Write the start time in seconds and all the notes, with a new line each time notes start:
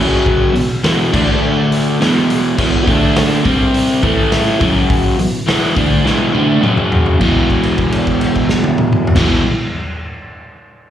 Already playing: F#2 C#3 F#3
0.26 kick
0.54 E2 B2, open hi-hat
0.84 E2 B2 E3, snare, open hi-hat
1.12 D3 A3 D4, kick, crash
1.72 open hi-hat
2.00 E2 B2 E3, snare, open hi-hat
2.30 open hi-hat
2.58 E2 B2 E3, kick, crash
2.87 D3 A3 D4, kick, open hi-hat
3.16 snare, open hi-hat
3.44 C3 G3 C4, kick, open hi-hat
3.74 open hi-hat
4.03 A2 E3 A3, kick, open hi-hat
4.32 snare, open hi-hat
4.59 F#2 C#3 F#3, kick, open hi-hat
4.90 kick, open hi-hat
5.18 E2 B2, open hi-hat
5.46 E2 B2 E3, snare, open hi-hat
5.76 D3 A3 D4, kick, open hi-hat
6.04 E2 B2 E3, snare
6.33 D3 A3 D4, high tom
6.62 F#2 C#3 F#3, mid tom
6.77 mid tom
6.92 floor tom
7.06 floor tom
7.20 E2 B2 E3, kick, crash
7.50 kick, crash
7.63 crash
7.78 kick, crash
7.92 crash
8.07 kick, crash
8.21 crash
8.35 kick, crash
8.49 snare
8.64 high tom
8.78 mid tom
8.93 mid tom
9.07 floor tom
9.15 E2 B2, kick, snare, crash
9.20 E3